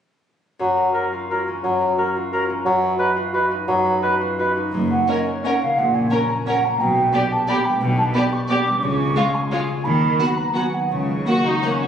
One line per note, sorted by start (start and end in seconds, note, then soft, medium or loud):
0.59 1.63 F#2 soft
0.59 0.89 F#3 soft
0.76 1.79 A#4 soft
0.94 1.07 F#4 soft
0.94 1.30 F#4 soft
0.94 1.07 A#4 soft
0.94 1.01 C#5 soft
1.13 1.43 F4 soft
1.31 1.43 F#4 soft
1.31 1.97 F#4 soft
1.31 1.43 A#4 soft
1.31 1.37 C#5 soft
1.48 2.48 C#4 soft
1.64 2.65 F#2 soft
1.64 1.92 F#3 soft
1.81 2.67 A#4 soft
1.98 2.32 F#4 soft
1.98 2.11 F#4 soft
1.98 2.11 A#4 soft
1.98 2.04 C#5 soft
2.16 2.45 F4 soft
2.33 2.45 F#4 soft
2.33 2.97 F#4 soft
2.33 2.45 A#4 soft
2.33 2.39 C#5 soft
2.50 2.67 C#4 soft
2.65 3.67 F#2 soft
2.65 2.93 F#3 medium
2.82 3.84 B4 soft
2.98 3.11 F#4 soft
2.98 3.33 F#4 soft
2.98 3.11 B4 soft
2.98 3.05 D#5 soft
3.16 3.46 F4 soft
3.33 3.45 F#4 soft
3.33 4.01 F#4 soft
3.33 3.46 B4 soft
3.33 3.41 D#5 soft
3.51 4.56 D#4 soft
3.68 4.73 F#2 medium
3.68 3.96 F#3 medium
3.85 4.75 B4 soft
4.01 4.14 F#4 soft
4.01 4.38 F#4 soft
4.01 4.16 B4 soft
4.01 4.09 D#5 soft
4.21 4.51 F4 soft
4.38 4.51 F#4 soft
4.38 5.07 F#4 soft
4.38 4.52 B4 soft
4.38 4.45 D#5 soft
4.57 4.75 D#4 soft
4.73 5.02 F#1 soft
4.73 5.02 F#2 soft
4.73 5.79 F#2 soft
4.90 5.43 C#4 soft
4.90 5.10 F#5 soft
5.09 5.17 C#4 soft
5.09 6.11 F#4 soft
5.09 5.18 A#4 soft
5.09 5.17 C#5 soft
5.09 5.28 D#5 medium
5.27 6.28 A#4 soft
5.27 5.46 C#5 soft
5.44 5.52 C#4 soft
5.44 5.93 C#4 soft
5.44 5.54 A#4 soft
5.44 5.52 C#5 soft
5.44 5.61 F#5 medium
5.61 5.79 C#3 soft
5.61 5.78 F5 medium
5.77 6.06 A#1 soft
5.77 6.06 A#2 soft
5.77 6.82 A#2 soft
5.77 5.96 F#5 medium
5.94 6.46 C#4 soft
5.94 6.12 G#5 medium
6.11 6.19 C#4 soft
6.11 6.82 F#4 soft
6.11 6.21 A#4 soft
6.11 6.19 C#5 soft
6.11 6.31 A#5 soft
6.29 6.82 A#4 soft
6.29 6.46 G#5 medium
6.46 6.54 C#4 soft
6.46 6.82 C#4 soft
6.46 6.57 A#4 soft
6.46 6.55 C#5 soft
6.46 6.66 F#5 medium
6.64 6.82 A#3 soft
6.64 6.81 A#5 medium
6.79 7.08 B1 soft
6.79 7.08 B2 medium
6.79 7.80 B2 soft
6.79 7.33 G5 medium
6.96 7.48 B3 soft
7.13 7.21 B3 soft
7.13 8.14 D4 soft
7.13 7.23 G4 soft
7.13 7.22 D5 soft
7.31 8.31 G4 soft
7.31 7.50 A5 medium
7.48 7.56 B3 soft
7.48 7.96 B3 soft
7.48 7.59 G4 soft
7.48 7.57 D5 soft
7.48 7.66 B5 medium
7.65 8.66 G3 soft
7.65 7.80 G5 medium
7.81 8.09 B1 soft
7.81 8.84 B2 soft
7.81 8.09 B2 medium
7.81 7.87 G5 medium
7.97 8.49 B3 soft
7.97 8.03 A5 medium
8.14 8.22 B3 soft
8.14 8.84 D4 soft
8.14 8.24 G4 soft
8.14 8.24 D5 soft
8.14 8.20 B5 medium
8.32 8.84 G4 soft
8.32 8.38 C#6 medium
8.49 8.84 B3 soft
8.49 8.58 B3 soft
8.49 8.58 G4 soft
8.49 8.57 D5 soft
8.49 8.83 D6 medium
8.67 8.84 G3 soft
8.82 9.11 C#2 soft
8.82 9.11 C#3 medium
8.82 9.87 C#3 soft
8.82 9.35 C#6 medium
9.00 9.50 G#3 soft
9.16 9.25 G#3 soft
9.16 9.87 F4 soft
9.16 9.25 F4 soft
9.16 9.24 C#5 soft
9.34 9.86 G#4 soft
9.34 9.51 G#5 medium
9.51 9.86 G#3 soft
9.51 9.60 G#3 soft
9.51 9.60 F4 soft
9.51 9.60 C#5 soft
9.51 9.85 G#5 medium
9.68 9.86 C#4 soft
9.84 10.13 D#2 soft
9.84 10.93 D#3 soft
9.84 10.14 D#3 medium
9.84 10.38 B5 medium
10.02 10.54 F#3 soft
10.19 10.27 B3 soft
10.19 11.26 F#4 soft
10.19 10.28 F#4 soft
10.19 10.28 F#5 soft
10.36 10.93 B4 soft
10.36 10.54 A#5 medium
10.54 11.08 F#3 soft
10.54 10.63 B3 soft
10.54 10.62 F#4 soft
10.54 10.64 F#5 soft
10.54 10.75 G#5 medium
10.73 10.93 D#4 soft
10.73 10.91 F#5 medium
10.91 11.21 C#2 soft
10.91 11.88 C#3 soft
10.91 11.22 C#3 medium
10.91 11.88 C#6 medium
11.09 11.63 F#3 soft
11.27 11.35 A#3 soft
11.27 11.88 F#4 soft
11.27 11.45 F#4 medium
11.27 11.35 F#5 soft
11.45 11.64 D#4 soft
11.45 11.88 A#4 soft
11.64 11.88 F#3 soft
11.64 11.73 A#3 soft
11.64 11.83 C#4 soft
11.64 11.72 F#5 soft
11.82 11.88 C#4 soft
11.82 11.88 F#4 soft